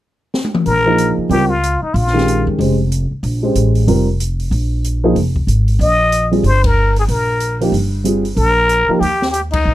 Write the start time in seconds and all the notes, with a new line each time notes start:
0.34 snare
0.44 high tom
0.54 mid tom
0.66 A#1 A#4, open hi-hat
0.86 F3 A#3 D#4 G#4
0.98 closed hi-hat
1.18 muted upright bass stroke
1.29 C#2 G3 C4 F4 G4 A#4, open hi-hat
1.49 F4
1.63 closed hi-hat
1.82 D#4, muted upright bass stroke
1.94 A#1 F4, open hi-hat
2.07 snare
2.13 D#3 G#3 C#4 G4
2.18 snare
2.28 closed hi-hat
2.47 F2
2.59 F1 G#3 C#4 G4 C5, open hi-hat
2.92 closed hi-hat
3.11 muted upright bass stroke
3.23 A#1, open hi-hat
3.43 G#3 C#4 G4 C5
3.55 A1, closed hi-hat
3.75 open hi-hat
3.87 F1 G3 C4 F4 A#4, open hi-hat
4.20 closed hi-hat
4.39 open hi-hat
4.51 A#1, open hi-hat
4.84 closed hi-hat
5.04 F3 A#3 D#4 G#4
5.15 F1, open hi-hat
5.36 kick
5.47 G#1, closed hi-hat
5.68 open hi-hat
5.79 A#1 D#5, open hi-hat
6.12 closed hi-hat
6.31 G3 C4 F4 G#4, open hi-hat
6.44 G1 C5, open hi-hat
6.64 A#4, kick, ride
6.96 G#4, open hi-hat
7.08 A#1 A#4, open hi-hat
7.40 closed hi-hat
7.61 F3 A#3 D#4 G4, open hi-hat
7.72 G1, open hi-hat
8.04 G3 C4 F4 G#4, closed hi-hat
8.25 open hi-hat
8.36 A#1 A#4, open hi-hat
8.69 closed hi-hat
8.89 F3 A#3 D#4 G4, muted upright bass stroke
9.00 D#2 G4, open hi-hat
9.22 snare
9.31 G4, closed hi-hat
9.51 D#4, kick, ride
9.65 A#1